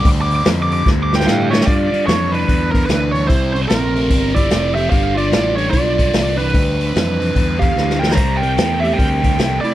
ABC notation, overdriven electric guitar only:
X:1
M:4/4
L:1/8
Q:"Swing" 1/4=148
K:C
V:1 name="Overdriven electric guitar" clef=bass
[G,,D,G,]6- [G,,D,G,] [G,,D,G,] | [G,,D,] [G,,D,] [G,,E,] [G,,E,] [G,,D,] [G,,D,] [G,,E,] [G,,E,] | [C,G,] [C,G,] [C,A,] [C,A,] [C,G,] [C,G,] [C,A,] [C,A,] | [G,,D,] [G,,D,] [G,,E,] [G,,E,] [G,,D,] [G,,D,] [G,,E,] [G,,E,] |
[G,,D,] [G,,D,] [G,,E,] [G,,E,] [G,,D,] [G,,D,] [G,,E,] [G,,E,] | [C,G,] [C,G,] [C,A,] [C,A,] [C,G,] [C,G,] [C,A,] [C,A,] |]